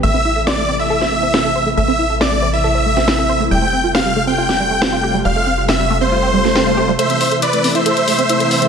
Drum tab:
HH |----------------|----------------|----------------|----------------|
SD |----o----o--o---|----o------oo---|----o----o--o---|----o------oo---|

HH |xxoxxxoxxxoxxxox|
SD |----------------|